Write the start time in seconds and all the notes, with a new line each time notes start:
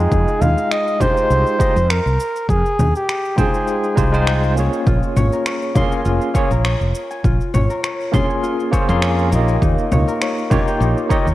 Already playing: G#3 D#4 F4 G#4 D#5 G5
0.12 F2, kick, shaker
0.28 shaker
0.41 D#2 F5, low conga, shaker
0.58 shaker
0.71 D#5, finger snap, shaker
0.87 shaker
1.00 G#3 D#4 F4 G4 C5, kick, low conga, shaker
1.17 shaker
1.30 C2, shaker
1.47 shaker
1.59 G#3 D#4 F4 G4 D#5, kick, shaker
1.76 F2, shaker
1.90 A#4, finger snap, shaker
2.06 C2, shaker
2.20 shaker
2.36 shaker
2.49 F2 G#4, kick, shaker
2.66 shaker
2.79 D#2, low conga, shaker
2.95 G4, shaker
3.09 finger snap, shaker
3.25 shaker
3.36 G#3 D#4 F4 G#4 C5 G5, kick, low conga, shaker
3.54 shaker
3.68 shaker
3.84 shaker
3.96 C2 G#3 D#4 F4 G4 C5, kick, shaker
4.12 G#3 D#4 F4 C5 G5, shaker
4.27 finger snap, shaker
4.43 shaker
4.55 A#3 C#4 F4 G#4, shaker
4.60 C#5
4.73 shaker
4.87 A#1 F4, kick, shaker
5.03 shaker
5.16 G#1 C#5, low conga, shaker
5.33 A#4, shaker
5.46 C#5, finger snap, shaker
5.62 shaker
5.75 A#3 C#4 F4 G#4 C6, kick, low conga, shaker
5.92 G#5, shaker
6.06 F1 F4, shaker
6.22 shaker
6.34 A#3 C#4 F4 G#4 C#5, kick, shaker
6.51 A#1 A#4, shaker
6.65 C#5, finger snap, shaker
6.81 F1, shaker
6.95 shaker
7.11 G#5, shaker
7.24 A#1 F4, kick, shaker
7.41 shaker
7.54 G#1 C#5, low conga, shaker
7.70 A#4, shaker
7.83 C#5, finger snap, shaker
8.01 shaker
8.12 A#3 C#4 F4 G#4 C6, kick, low conga, shaker
8.30 G#5, shaker
8.43 F4, shaker
8.60 shaker
8.72 A#3 C#4 F4 G#4 C5 C#5, kick, shaker
8.88 F2 A#3 C#4 F4 G#4 A#4 C6, shaker
9.02 C#5, finger snap, shaker
9.19 shaker
9.31 A#1 A#3 D#4 F4 G4, shaker
9.35 D#5
9.48 G#5, shaker
9.61 D#2 D#4, kick, shaker
9.78 shaker
9.92 C#2 C#5, low conga, shaker
10.07 A#4, shaker
10.21 C#5, finger snap, shaker
10.38 shaker
10.50 A#3 D#4 F4 G4 C#5, kick, low conga, shaker
10.67 G5, shaker
10.80 A#1 D#4, shaker
10.97 shaker
11.09 A#3 D#4 F4 G4 C#5 D#5, kick, shaker
11.26 D#2 A#4, shaker